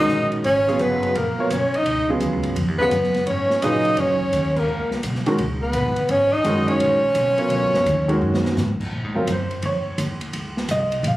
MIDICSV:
0, 0, Header, 1, 7, 480
1, 0, Start_track
1, 0, Tempo, 353149
1, 608, Time_signature, 4, 2, 24, 8
1, 15178, End_track
2, 0, Start_track
2, 0, Title_t, "Alto saxophone"
2, 0, Program_c, 0, 65
2, 0, Note_on_c, 0, 75, 76
2, 410, Note_off_c, 0, 75, 0
2, 604, Note_on_c, 0, 73, 69
2, 1095, Note_on_c, 0, 71, 66
2, 1115, Note_off_c, 0, 73, 0
2, 1573, Note_on_c, 0, 70, 75
2, 1593, Note_off_c, 0, 71, 0
2, 2044, Note_on_c, 0, 73, 67
2, 2064, Note_off_c, 0, 70, 0
2, 2386, Note_on_c, 0, 75, 72
2, 2407, Note_off_c, 0, 73, 0
2, 2853, Note_off_c, 0, 75, 0
2, 3784, Note_on_c, 0, 71, 76
2, 4392, Note_off_c, 0, 71, 0
2, 4436, Note_on_c, 0, 73, 70
2, 4918, Note_on_c, 0, 75, 76
2, 4938, Note_off_c, 0, 73, 0
2, 5405, Note_on_c, 0, 73, 85
2, 5425, Note_off_c, 0, 75, 0
2, 6209, Note_on_c, 0, 70, 69
2, 6229, Note_off_c, 0, 73, 0
2, 6684, Note_off_c, 0, 70, 0
2, 7636, Note_on_c, 0, 71, 73
2, 8284, Note_on_c, 0, 73, 82
2, 8305, Note_off_c, 0, 71, 0
2, 8591, Note_on_c, 0, 75, 103
2, 8612, Note_off_c, 0, 73, 0
2, 9074, Note_on_c, 0, 73, 87
2, 9095, Note_off_c, 0, 75, 0
2, 11644, Note_off_c, 0, 73, 0
2, 15178, End_track
3, 0, Start_track
3, 0, Title_t, "Grand piano"
3, 0, Program_c, 1, 0
3, 0, Note_on_c, 1, 51, 72
3, 0, Note_on_c, 1, 56, 69
3, 0, Note_on_c, 1, 61, 65
3, 0, Note_on_c, 1, 66, 61
3, 0, Note_on_c, 1, 70, 78
3, 568, Note_off_c, 1, 51, 0
3, 573, Note_off_c, 1, 56, 0
3, 575, Note_off_c, 1, 61, 0
3, 575, Note_off_c, 1, 66, 0
3, 579, Note_off_c, 1, 70, 0
3, 916, Note_on_c, 1, 49, 73
3, 916, Note_on_c, 1, 54, 70
3, 923, Note_on_c, 1, 59, 66
3, 929, Note_on_c, 1, 65, 64
3, 933, Note_on_c, 1, 68, 81
3, 1531, Note_off_c, 1, 49, 0
3, 1531, Note_off_c, 1, 54, 0
3, 1535, Note_off_c, 1, 59, 0
3, 1538, Note_off_c, 1, 65, 0
3, 1540, Note_off_c, 1, 68, 0
3, 1882, Note_on_c, 1, 54, 56
3, 1885, Note_on_c, 1, 59, 58
3, 1895, Note_on_c, 1, 65, 56
3, 1899, Note_on_c, 1, 70, 55
3, 1904, Note_on_c, 1, 73, 75
3, 2031, Note_off_c, 1, 54, 0
3, 2032, Note_off_c, 1, 59, 0
3, 2037, Note_off_c, 1, 65, 0
3, 2039, Note_off_c, 1, 70, 0
3, 2042, Note_off_c, 1, 73, 0
3, 2842, Note_on_c, 1, 49, 66
3, 2842, Note_on_c, 1, 54, 54
3, 2853, Note_on_c, 1, 59, 57
3, 2855, Note_on_c, 1, 65, 61
3, 2860, Note_on_c, 1, 68, 67
3, 3454, Note_off_c, 1, 49, 0
3, 3454, Note_off_c, 1, 54, 0
3, 3459, Note_off_c, 1, 59, 0
3, 3461, Note_off_c, 1, 65, 0
3, 3463, Note_off_c, 1, 68, 0
3, 3800, Note_on_c, 1, 49, 65
3, 3809, Note_on_c, 1, 54, 53
3, 3815, Note_on_c, 1, 59, 56
3, 3816, Note_on_c, 1, 65, 62
3, 3825, Note_on_c, 1, 68, 63
3, 3950, Note_off_c, 1, 49, 0
3, 3954, Note_off_c, 1, 54, 0
3, 3957, Note_off_c, 1, 59, 0
3, 3957, Note_off_c, 1, 65, 0
3, 3962, Note_off_c, 1, 68, 0
3, 4919, Note_on_c, 1, 49, 58
3, 4931, Note_on_c, 1, 54, 61
3, 4931, Note_on_c, 1, 71, 59
3, 4939, Note_on_c, 1, 65, 54
3, 4945, Note_on_c, 1, 68, 64
3, 5653, Note_off_c, 1, 49, 0
3, 5659, Note_off_c, 1, 54, 0
3, 5659, Note_off_c, 1, 71, 0
3, 5663, Note_off_c, 1, 65, 0
3, 5666, Note_off_c, 1, 68, 0
3, 7156, Note_on_c, 1, 51, 74
3, 7157, Note_on_c, 1, 56, 66
3, 7161, Note_on_c, 1, 61, 68
3, 7167, Note_on_c, 1, 66, 72
3, 7178, Note_on_c, 1, 70, 86
3, 7308, Note_off_c, 1, 51, 0
3, 7308, Note_off_c, 1, 56, 0
3, 7310, Note_off_c, 1, 61, 0
3, 7313, Note_off_c, 1, 66, 0
3, 7318, Note_off_c, 1, 70, 0
3, 8757, Note_on_c, 1, 51, 70
3, 8766, Note_on_c, 1, 56, 74
3, 8771, Note_on_c, 1, 61, 68
3, 8773, Note_on_c, 1, 66, 71
3, 8782, Note_on_c, 1, 70, 82
3, 9492, Note_off_c, 1, 51, 0
3, 9497, Note_off_c, 1, 56, 0
3, 9499, Note_off_c, 1, 61, 0
3, 9500, Note_off_c, 1, 66, 0
3, 9505, Note_off_c, 1, 70, 0
3, 10020, Note_on_c, 1, 54, 69
3, 10026, Note_on_c, 1, 59, 61
3, 10031, Note_on_c, 1, 65, 62
3, 10039, Note_on_c, 1, 70, 58
3, 10043, Note_on_c, 1, 73, 80
3, 10643, Note_off_c, 1, 54, 0
3, 10646, Note_off_c, 1, 59, 0
3, 10649, Note_off_c, 1, 65, 0
3, 10653, Note_off_c, 1, 70, 0
3, 10654, Note_off_c, 1, 73, 0
3, 10986, Note_on_c, 1, 51, 65
3, 10990, Note_on_c, 1, 56, 64
3, 10998, Note_on_c, 1, 61, 64
3, 11001, Note_on_c, 1, 66, 64
3, 11006, Note_on_c, 1, 70, 72
3, 11606, Note_off_c, 1, 51, 0
3, 11608, Note_off_c, 1, 56, 0
3, 11612, Note_off_c, 1, 61, 0
3, 11614, Note_off_c, 1, 66, 0
3, 11616, Note_off_c, 1, 70, 0
3, 12433, Note_on_c, 1, 54, 59
3, 12437, Note_on_c, 1, 60, 57
3, 12446, Note_on_c, 1, 65, 60
3, 12452, Note_on_c, 1, 70, 67
3, 12587, Note_off_c, 1, 54, 0
3, 12588, Note_off_c, 1, 60, 0
3, 12593, Note_off_c, 1, 65, 0
3, 12596, Note_off_c, 1, 70, 0
3, 12669, Note_on_c, 1, 72, 68
3, 13087, Note_off_c, 1, 72, 0
3, 13124, Note_on_c, 1, 73, 71
3, 13554, Note_off_c, 1, 73, 0
3, 14559, Note_on_c, 1, 75, 75
3, 14992, Note_off_c, 1, 75, 0
3, 15051, Note_on_c, 1, 77, 69
3, 15178, Note_off_c, 1, 77, 0
3, 15178, End_track
4, 0, Start_track
4, 0, Title_t, "Tenor saxophone"
4, 0, Program_c, 2, 66
4, 0, Note_on_c, 2, 63, 104
4, 415, Note_off_c, 2, 63, 0
4, 614, Note_on_c, 2, 61, 106
4, 1107, Note_on_c, 2, 59, 91
4, 1128, Note_off_c, 2, 61, 0
4, 1600, Note_on_c, 2, 58, 77
4, 1620, Note_off_c, 2, 59, 0
4, 2092, Note_on_c, 2, 61, 84
4, 2112, Note_off_c, 2, 58, 0
4, 2417, Note_on_c, 2, 63, 92
4, 2438, Note_off_c, 2, 61, 0
4, 2869, Note_off_c, 2, 63, 0
4, 3825, Note_on_c, 2, 59, 82
4, 4414, Note_off_c, 2, 59, 0
4, 4477, Note_on_c, 2, 61, 91
4, 4956, Note_on_c, 2, 63, 106
4, 4976, Note_off_c, 2, 61, 0
4, 5437, Note_on_c, 2, 61, 92
4, 5457, Note_off_c, 2, 63, 0
4, 6245, Note_on_c, 2, 58, 78
4, 6265, Note_off_c, 2, 61, 0
4, 6702, Note_off_c, 2, 58, 0
4, 7651, Note_on_c, 2, 59, 92
4, 8298, Note_on_c, 2, 61, 103
4, 8318, Note_off_c, 2, 59, 0
4, 8608, Note_on_c, 2, 63, 90
4, 8628, Note_off_c, 2, 61, 0
4, 9092, Note_on_c, 2, 61, 98
4, 9113, Note_off_c, 2, 63, 0
4, 11653, Note_off_c, 2, 61, 0
4, 15178, End_track
5, 0, Start_track
5, 0, Title_t, "Upright bass"
5, 0, Program_c, 3, 32
5, 119, Note_on_c, 3, 34, 85
5, 589, Note_off_c, 3, 34, 0
5, 608, Note_on_c, 3, 32, 72
5, 1073, Note_off_c, 3, 32, 0
5, 1092, Note_on_c, 3, 30, 87
5, 1555, Note_off_c, 3, 30, 0
5, 1570, Note_on_c, 3, 34, 80
5, 1860, Note_off_c, 3, 34, 0
5, 2052, Note_on_c, 3, 35, 85
5, 2515, Note_off_c, 3, 35, 0
5, 2529, Note_on_c, 3, 37, 70
5, 2993, Note_off_c, 3, 37, 0
5, 3003, Note_on_c, 3, 39, 77
5, 3161, Note_off_c, 3, 39, 0
5, 3161, Note_on_c, 3, 37, 47
5, 3310, Note_off_c, 3, 37, 0
5, 3318, Note_on_c, 3, 32, 51
5, 3471, Note_off_c, 3, 32, 0
5, 3478, Note_on_c, 3, 41, 83
5, 3643, Note_off_c, 3, 41, 0
5, 3643, Note_on_c, 3, 39, 57
5, 3797, Note_off_c, 3, 39, 0
5, 3805, Note_on_c, 3, 37, 56
5, 3950, Note_off_c, 3, 37, 0
5, 3958, Note_on_c, 3, 42, 87
5, 4427, Note_off_c, 3, 42, 0
5, 4448, Note_on_c, 3, 44, 69
5, 4913, Note_off_c, 3, 44, 0
5, 4924, Note_on_c, 3, 46, 82
5, 5390, Note_off_c, 3, 46, 0
5, 5405, Note_on_c, 3, 42, 74
5, 5871, Note_off_c, 3, 42, 0
5, 5880, Note_on_c, 3, 39, 83
5, 6348, Note_off_c, 3, 39, 0
5, 6367, Note_on_c, 3, 37, 76
5, 6832, Note_off_c, 3, 37, 0
5, 6846, Note_on_c, 3, 35, 77
5, 7312, Note_off_c, 3, 35, 0
5, 7318, Note_on_c, 3, 37, 88
5, 7787, Note_off_c, 3, 37, 0
5, 7802, Note_on_c, 3, 34, 85
5, 7957, Note_off_c, 3, 34, 0
5, 7957, Note_on_c, 3, 32, 58
5, 8114, Note_off_c, 3, 32, 0
5, 8122, Note_on_c, 3, 30, 72
5, 8269, Note_off_c, 3, 30, 0
5, 8277, Note_on_c, 3, 32, 81
5, 8747, Note_off_c, 3, 32, 0
5, 8762, Note_on_c, 3, 30, 95
5, 9229, Note_off_c, 3, 30, 0
5, 9240, Note_on_c, 3, 34, 80
5, 9709, Note_off_c, 3, 34, 0
5, 9718, Note_on_c, 3, 35, 87
5, 10188, Note_off_c, 3, 35, 0
5, 10199, Note_on_c, 3, 37, 75
5, 10360, Note_on_c, 3, 32, 55
5, 10380, Note_off_c, 3, 37, 0
5, 10515, Note_off_c, 3, 32, 0
5, 10523, Note_on_c, 3, 30, 61
5, 10674, Note_off_c, 3, 30, 0
5, 10680, Note_on_c, 3, 39, 93
5, 11149, Note_off_c, 3, 39, 0
5, 11168, Note_on_c, 3, 42, 83
5, 11633, Note_off_c, 3, 42, 0
5, 11647, Note_on_c, 3, 44, 77
5, 11939, Note_off_c, 3, 44, 0
5, 12124, Note_on_c, 3, 46, 65
5, 12293, Note_off_c, 3, 46, 0
5, 12293, Note_on_c, 3, 44, 49
5, 12444, Note_off_c, 3, 44, 0
5, 12452, Note_on_c, 3, 41, 59
5, 12599, Note_off_c, 3, 41, 0
5, 12619, Note_on_c, 3, 42, 74
5, 13079, Note_off_c, 3, 42, 0
5, 13090, Note_on_c, 3, 41, 84
5, 13381, Note_off_c, 3, 41, 0
5, 13564, Note_on_c, 3, 39, 84
5, 13858, Note_off_c, 3, 39, 0
5, 14048, Note_on_c, 3, 37, 71
5, 14514, Note_off_c, 3, 37, 0
5, 14524, Note_on_c, 3, 36, 84
5, 14985, Note_off_c, 3, 36, 0
5, 14994, Note_on_c, 3, 34, 78
5, 15178, Note_off_c, 3, 34, 0
5, 15178, End_track
6, 0, Start_track
6, 0, Title_t, "Muted upright bass strokes"
6, 11963, Note_on_c, 9, 29, 37
6, 12099, Note_off_c, 9, 29, 0
6, 13399, Note_on_c, 9, 29, 29
6, 13535, Note_off_c, 9, 29, 0
6, 13886, Note_on_c, 9, 29, 34
6, 14022, Note_off_c, 9, 29, 0
6, 15178, End_track
7, 0, Start_track
7, 0, Title_t, "Drums"
7, 117, Note_on_c, 9, 44, 55
7, 253, Note_off_c, 9, 44, 0
7, 429, Note_on_c, 9, 51, 41
7, 565, Note_off_c, 9, 51, 0
7, 600, Note_on_c, 9, 51, 55
7, 736, Note_off_c, 9, 51, 0
7, 916, Note_on_c, 9, 38, 39
7, 1052, Note_off_c, 9, 38, 0
7, 1075, Note_on_c, 9, 44, 48
7, 1075, Note_on_c, 9, 51, 51
7, 1211, Note_off_c, 9, 44, 0
7, 1211, Note_off_c, 9, 51, 0
7, 1396, Note_on_c, 9, 51, 44
7, 1532, Note_off_c, 9, 51, 0
7, 1567, Note_on_c, 9, 51, 59
7, 1703, Note_off_c, 9, 51, 0
7, 2044, Note_on_c, 9, 44, 58
7, 2044, Note_on_c, 9, 51, 69
7, 2180, Note_off_c, 9, 44, 0
7, 2180, Note_off_c, 9, 51, 0
7, 2364, Note_on_c, 9, 51, 43
7, 2500, Note_off_c, 9, 51, 0
7, 2523, Note_on_c, 9, 51, 61
7, 2659, Note_off_c, 9, 51, 0
7, 2995, Note_on_c, 9, 44, 50
7, 2995, Note_on_c, 9, 51, 49
7, 3131, Note_off_c, 9, 44, 0
7, 3131, Note_off_c, 9, 51, 0
7, 3307, Note_on_c, 9, 51, 45
7, 3443, Note_off_c, 9, 51, 0
7, 3481, Note_on_c, 9, 51, 57
7, 3617, Note_off_c, 9, 51, 0
7, 3957, Note_on_c, 9, 44, 61
7, 3957, Note_on_c, 9, 51, 60
7, 4093, Note_off_c, 9, 44, 0
7, 4093, Note_off_c, 9, 51, 0
7, 4127, Note_on_c, 9, 38, 26
7, 4263, Note_off_c, 9, 38, 0
7, 4273, Note_on_c, 9, 51, 38
7, 4287, Note_on_c, 9, 38, 39
7, 4409, Note_off_c, 9, 51, 0
7, 4423, Note_off_c, 9, 38, 0
7, 4439, Note_on_c, 9, 51, 57
7, 4575, Note_off_c, 9, 51, 0
7, 4761, Note_on_c, 9, 38, 46
7, 4897, Note_off_c, 9, 38, 0
7, 4922, Note_on_c, 9, 44, 51
7, 4922, Note_on_c, 9, 51, 63
7, 5058, Note_off_c, 9, 44, 0
7, 5058, Note_off_c, 9, 51, 0
7, 5230, Note_on_c, 9, 51, 38
7, 5366, Note_off_c, 9, 51, 0
7, 5392, Note_on_c, 9, 51, 61
7, 5528, Note_off_c, 9, 51, 0
7, 5717, Note_on_c, 9, 36, 49
7, 5853, Note_off_c, 9, 36, 0
7, 5880, Note_on_c, 9, 44, 49
7, 5880, Note_on_c, 9, 51, 62
7, 6016, Note_off_c, 9, 44, 0
7, 6016, Note_off_c, 9, 51, 0
7, 6200, Note_on_c, 9, 36, 70
7, 6202, Note_on_c, 9, 49, 62
7, 6336, Note_off_c, 9, 36, 0
7, 6338, Note_off_c, 9, 49, 0
7, 6676, Note_on_c, 9, 38, 43
7, 6812, Note_off_c, 9, 38, 0
7, 6837, Note_on_c, 9, 44, 58
7, 6837, Note_on_c, 9, 51, 60
7, 6972, Note_off_c, 9, 44, 0
7, 6972, Note_off_c, 9, 51, 0
7, 7003, Note_on_c, 9, 38, 29
7, 7139, Note_off_c, 9, 38, 0
7, 7151, Note_on_c, 9, 51, 43
7, 7163, Note_on_c, 9, 38, 34
7, 7287, Note_off_c, 9, 51, 0
7, 7299, Note_off_c, 9, 38, 0
7, 7317, Note_on_c, 9, 51, 60
7, 7453, Note_off_c, 9, 51, 0
7, 7790, Note_on_c, 9, 44, 58
7, 7790, Note_on_c, 9, 51, 63
7, 7926, Note_off_c, 9, 44, 0
7, 7926, Note_off_c, 9, 51, 0
7, 8104, Note_on_c, 9, 51, 43
7, 8239, Note_off_c, 9, 51, 0
7, 8272, Note_on_c, 9, 51, 55
7, 8408, Note_off_c, 9, 51, 0
7, 8597, Note_on_c, 9, 36, 47
7, 8733, Note_off_c, 9, 36, 0
7, 8758, Note_on_c, 9, 44, 47
7, 8758, Note_on_c, 9, 51, 59
7, 8894, Note_off_c, 9, 44, 0
7, 8894, Note_off_c, 9, 51, 0
7, 9077, Note_on_c, 9, 51, 43
7, 9213, Note_off_c, 9, 51, 0
7, 9243, Note_on_c, 9, 51, 61
7, 9379, Note_off_c, 9, 51, 0
7, 9714, Note_on_c, 9, 44, 54
7, 9714, Note_on_c, 9, 51, 64
7, 9850, Note_off_c, 9, 44, 0
7, 9850, Note_off_c, 9, 51, 0
7, 10027, Note_on_c, 9, 51, 39
7, 10163, Note_off_c, 9, 51, 0
7, 10193, Note_on_c, 9, 51, 59
7, 10329, Note_off_c, 9, 51, 0
7, 10521, Note_on_c, 9, 38, 55
7, 10657, Note_off_c, 9, 38, 0
7, 10686, Note_on_c, 9, 44, 44
7, 10686, Note_on_c, 9, 51, 58
7, 10822, Note_off_c, 9, 44, 0
7, 10822, Note_off_c, 9, 51, 0
7, 10995, Note_on_c, 9, 51, 43
7, 11131, Note_off_c, 9, 51, 0
7, 11334, Note_on_c, 9, 38, 69
7, 11470, Note_off_c, 9, 38, 0
7, 11487, Note_on_c, 9, 38, 68
7, 11623, Note_off_c, 9, 38, 0
7, 11644, Note_on_c, 9, 44, 63
7, 11651, Note_on_c, 9, 38, 57
7, 11780, Note_off_c, 9, 44, 0
7, 11787, Note_off_c, 9, 38, 0
7, 11963, Note_on_c, 9, 36, 71
7, 11967, Note_on_c, 9, 49, 66
7, 12099, Note_off_c, 9, 36, 0
7, 12102, Note_off_c, 9, 49, 0
7, 12604, Note_on_c, 9, 44, 48
7, 12604, Note_on_c, 9, 51, 60
7, 12740, Note_off_c, 9, 44, 0
7, 12740, Note_off_c, 9, 51, 0
7, 12921, Note_on_c, 9, 51, 39
7, 13057, Note_off_c, 9, 51, 0
7, 13079, Note_on_c, 9, 51, 53
7, 13215, Note_off_c, 9, 51, 0
7, 13565, Note_on_c, 9, 44, 50
7, 13565, Note_on_c, 9, 51, 60
7, 13701, Note_off_c, 9, 44, 0
7, 13701, Note_off_c, 9, 51, 0
7, 13876, Note_on_c, 9, 51, 44
7, 14012, Note_off_c, 9, 51, 0
7, 14043, Note_on_c, 9, 51, 54
7, 14179, Note_off_c, 9, 51, 0
7, 14370, Note_on_c, 9, 38, 41
7, 14506, Note_off_c, 9, 38, 0
7, 14523, Note_on_c, 9, 44, 44
7, 14523, Note_on_c, 9, 51, 57
7, 14659, Note_off_c, 9, 44, 0
7, 14659, Note_off_c, 9, 51, 0
7, 14840, Note_on_c, 9, 51, 38
7, 14976, Note_off_c, 9, 51, 0
7, 15007, Note_on_c, 9, 51, 59
7, 15143, Note_off_c, 9, 51, 0
7, 15178, End_track
0, 0, End_of_file